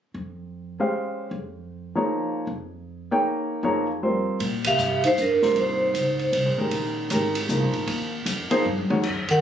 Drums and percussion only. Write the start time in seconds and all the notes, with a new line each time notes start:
4.40 ride
4.64 kick, ride
4.78 hi-hat pedal
5.04 ride
5.17 hi-hat pedal
5.42 snare
5.56 ride
5.95 hi-hat pedal, ride
6.19 ride
6.33 ride
6.71 ride
7.10 hi-hat pedal, ride
7.35 ride
7.49 hi-hat pedal
7.73 ride
7.87 ride
8.26 hi-hat pedal, ride
8.51 ride
8.65 high tom
8.78 high tom
8.90 floor tom
9.03 kick, crash
9.28 kick, ride